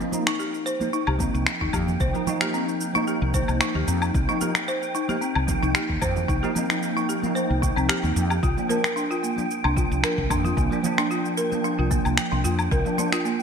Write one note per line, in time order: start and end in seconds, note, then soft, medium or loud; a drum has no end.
0.00 0.10 A#3 medium
0.00 0.10 D#4 medium
0.00 13.43 G5 medium
0.00 shaker soft
0.12 0.24 F3 medium
0.12 0.24 A#3 medium
0.12 0.25 D#4 medium
0.12 high conga medium
0.12 shaker medium
0.27 0.39 D#4 loud
0.27 finger snap medium
0.27 shaker soft
0.39 0.65 G4 medium
0.39 shaker soft
0.54 shaker soft
0.66 0.74 C5 medium
0.66 shaker medium
0.80 0.86 F3 medium
0.80 0.87 A#3 medium
0.80 0.87 D#4 medium
0.80 high conga medium
0.80 shaker soft
0.93 1.06 D#4 medium
0.93 shaker soft
1.07 1.29 C2 medium
1.07 1.19 G4 medium
1.07 low woodblock medium
1.18 2.10 F3 medium
1.18 2.11 A#3 medium
1.18 1.34 C4 medium
1.18 kick medium
1.18 high conga medium
1.18 shaker medium
1.22 2.12 D#4 medium
1.34 1.44 C2 medium
1.34 shaker soft
1.47 finger snap medium
1.47 shaker soft
1.61 1.71 D#2 medium
1.61 1.73 D#4 medium
1.61 kick medium
1.61 high bongo soft
1.73 1.96 F2 loud
1.73 1.99 G4 medium
1.73 kick loud
1.73 low conga medium
1.73 low woodblock medium
1.73 shaker medium
1.88 high bongo soft
1.88 low conga medium
1.88 shaker soft
2.00 2.12 C2 medium
2.00 2.09 C5 medium
2.00 kick loud
2.00 shaker soft
2.13 2.20 F3 medium
2.13 2.21 A#3 medium
2.13 2.21 D#4 loud
2.13 shaker soft
2.25 2.90 F3 medium
2.25 2.91 A#3 medium
2.25 2.40 D#4 medium
2.25 2.92 D#4 loud
2.25 high bongo soft
2.25 high conga medium
2.25 low conga medium
2.25 shaker medium
2.41 2.53 G4 medium
2.41 finger snap medium
2.41 shaker soft
2.54 2.68 C4 medium
2.54 shaker soft
2.68 shaker soft
2.81 shaker medium
2.93 4.24 F3 medium
2.93 4.25 A#3 medium
2.93 3.07 D#4 loud
2.93 4.26 D#4 medium
2.93 high conga medium
2.93 shaker soft
3.07 3.33 G4 medium
3.07 shaker soft
3.22 3.43 C2 medium
3.34 3.42 C5 loud
3.34 kick loud
3.34 shaker medium
3.48 3.59 C2 medium
3.48 high conga soft
3.48 low woodblock medium
3.48 shaker soft
3.61 3.74 D#4 loud
3.61 finger snap medium
3.61 shaker soft
3.75 3.85 D#2 medium
3.75 3.86 G4 medium
3.75 high conga medium
3.88 4.10 F2 medium
3.88 4.01 C4 medium
3.88 shaker medium
4.02 low woodblock medium
4.02 shaker soft
4.14 4.26 C2 loud
4.14 kick loud
4.14 shaker soft
4.27 4.37 F3 medium
4.27 4.38 A#3 medium
4.27 4.41 D#4 loud
4.27 4.38 D#4 medium
4.27 shaker soft
4.40 4.52 F3 medium
4.40 4.53 A#3 medium
4.40 4.53 D#4 medium
4.40 4.67 G4 medium
4.40 high conga medium
4.40 shaker medium
4.55 finger snap medium
4.55 shaker soft
4.68 4.76 C5 loud
4.68 shaker soft
4.83 shaker soft
4.95 5.08 D#4 loud
4.95 shaker medium
5.08 5.15 F3 medium
5.08 5.15 A#3 medium
5.08 5.16 D#4 medium
5.08 5.20 G4 medium
5.08 high conga medium
5.08 shaker soft
5.21 5.35 C4 medium
5.21 shaker soft
5.35 5.57 C2 medium
5.35 low woodblock medium
5.46 6.39 F3 medium
5.46 6.40 A#3 medium
5.46 kick loud
5.46 high conga medium
5.46 shaker medium
5.50 6.41 D#4 medium
5.63 5.73 C2 medium
5.63 5.74 D#4 medium
5.63 shaker soft
5.75 6.01 G4 medium
5.75 finger snap medium
5.75 shaker soft
5.89 6.00 D#2 medium
5.89 kick medium
5.89 high bongo soft
6.02 6.24 F2 medium
6.02 6.10 C5 loud
6.02 kick loud
6.02 low conga medium
6.02 low woodblock medium
6.02 shaker medium
6.16 high bongo soft
6.16 low conga medium
6.16 shaker soft
6.28 6.40 C2 medium
6.28 6.41 D#4 medium
6.28 kick loud
6.28 shaker soft
6.42 6.49 F3 medium
6.42 6.49 A#3 medium
6.42 6.50 D#4 loud
6.42 6.54 G4 medium
6.42 shaker soft
6.54 7.19 F3 medium
6.54 7.20 A#3 medium
6.54 6.69 C4 medium
6.54 high bongo soft
6.54 high conga medium
6.54 low conga medium
6.54 shaker medium
6.58 7.21 D#4 medium
6.70 finger snap medium
6.70 shaker soft
6.83 shaker soft
6.97 7.08 D#4 medium
6.97 shaker soft
7.09 7.35 G4 medium
7.09 shaker medium
7.21 8.41 F3 medium
7.21 8.42 A#3 medium
7.21 high bongo soft
7.21 high conga medium
7.21 shaker soft
7.26 8.43 D#4 medium
7.35 7.44 C5 medium
7.35 shaker soft
7.50 7.72 C2 medium
7.62 7.75 D#4 medium
7.62 kick loud
7.62 shaker medium
7.76 7.87 C2 medium
7.76 7.84 C4 medium
7.76 high conga soft
7.76 low woodblock medium
7.76 shaker soft
7.89 8.03 G4 medium
7.89 finger snap medium
7.89 shaker soft
8.04 8.14 D#2 medium
8.04 high conga medium
8.04 shaker soft
8.16 8.38 F2 medium
8.16 shaker medium
8.30 8.42 G4 medium
8.30 low woodblock medium
8.30 shaker soft
8.43 8.55 C2 medium
8.43 8.68 F4 medium
8.43 kick loud
8.43 shaker soft
8.57 8.66 F3 medium
8.57 8.67 A#3 medium
8.57 8.67 D4 medium
8.57 shaker soft
8.68 8.81 F3 medium
8.68 8.81 A#3 medium
8.68 8.82 D4 medium
8.68 8.78 A#4 medium
8.68 high conga medium
8.68 shaker medium
8.84 finger snap medium
8.84 shaker soft
8.96 9.09 D4 medium
8.96 shaker soft
9.11 9.22 F4 medium
9.11 shaker soft
9.23 9.37 A#3 medium
9.23 shaker medium
9.36 9.43 F3 medium
9.36 9.44 A#3 medium
9.36 9.44 D4 medium
9.36 high conga medium
9.36 shaker soft
9.51 shaker soft
9.64 9.86 C2 medium
9.64 9.76 D4 medium
9.64 low woodblock medium
9.74 10.67 F3 medium
9.74 10.68 A#3 medium
9.74 10.02 F4 medium
9.74 kick loud
9.74 high conga soft
9.74 shaker medium
9.78 10.69 D4 medium
9.91 10.02 C2 medium
9.91 shaker soft
10.03 10.12 A#4 medium
10.03 finger snap medium
10.03 shaker soft
10.18 10.28 C2 medium
10.18 kick medium
10.18 high bongo soft
10.30 10.53 F2 medium
10.30 10.43 D4 loud
10.30 kick loud
10.30 low conga medium
10.30 low woodblock medium
10.30 shaker medium
10.45 10.56 F4 medium
10.45 high bongo soft
10.45 low conga medium
10.45 shaker soft
10.57 10.69 C2 loud
10.57 10.71 A#3 medium
10.57 kick loud
10.57 shaker soft
10.70 10.77 F3 medium
10.70 10.78 A#3 medium
10.70 10.78 D4 loud
10.70 shaker soft
10.81 11.47 F3 medium
10.81 11.48 A#3 medium
10.81 high bongo soft
10.81 high conga medium
10.81 low conga medium
10.81 shaker medium
10.86 11.49 D4 medium
10.98 11.10 D4 loud
10.98 finger snap medium
10.98 shaker soft
11.11 11.36 F4 medium
11.11 shaker soft
11.25 shaker soft
11.37 11.46 A#4 medium
11.37 shaker medium
11.49 12.81 F3 medium
11.49 12.82 A#3 medium
11.49 high conga medium
11.49 shaker soft
11.54 12.83 D4 medium
11.64 11.77 D4 medium
11.64 shaker soft
11.79 12.00 C2 medium
11.79 11.90 F4 medium
11.91 12.05 A#3 medium
11.91 kick loud
11.91 shaker medium
12.05 12.16 C2 medium
12.05 high conga soft
12.05 low woodblock medium
12.05 shaker soft
12.18 finger snap medium
12.18 shaker soft
12.32 12.42 C2 medium
12.32 12.44 D4 medium
12.32 high conga medium
12.44 12.67 F2 loud
12.44 12.70 F4 medium
12.44 shaker medium
12.59 low woodblock medium
12.59 shaker soft
12.71 12.83 C2 loud
12.71 12.80 A#4 medium
12.71 kick loud
12.71 shaker soft
12.85 12.95 F3 medium
12.85 12.95 A#3 medium
12.85 12.96 D4 medium
12.85 shaker soft
12.97 13.09 F3 medium
12.97 13.10 A#3 medium
12.97 13.11 D4 medium
12.97 13.10 D4 medium
12.97 high conga medium
12.97 shaker medium
13.12 13.24 F4 medium
13.12 finger snap medium
13.12 shaker soft
13.25 13.39 A#3 medium
13.25 shaker soft